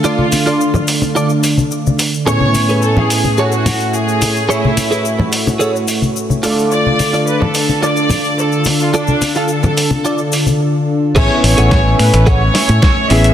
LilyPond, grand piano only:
\new Staff \with { instrumentName = "Grand piano" } { \time 4/4 \key a \major \tempo 4 = 108 <a d' f'>2.~ <a d' f'>8 r8 | <a, b cis' e' gis''>1~ | <a, b cis' e' gis''>2.~ <a, b cis' e' gis''>8 <a d' f' a'>8~ | <a d' f' a'>1~ |
<a d' f' a'>2. r4 | <b cis' e' gis''>2.~ <b cis' e' gis''>8 <b cis' e' gis'>8 | }